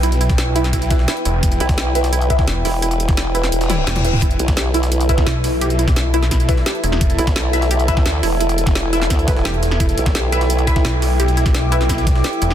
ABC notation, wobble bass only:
X:1
M:4/4
L:1/8
Q:1/4=172
K:Em
V:1 name="Wobble bass" clef=bass
z8 | z B,,,4- B,,, z E,,,- | E,,,4 E,,,2 z2 | z B,,,4- B,,, z2 |
z8 | z B,,,4- B,,, D,, E,,,- | E,,,4 D,,2 z2 | z B,,,4- B,,, z2 |
z8 |]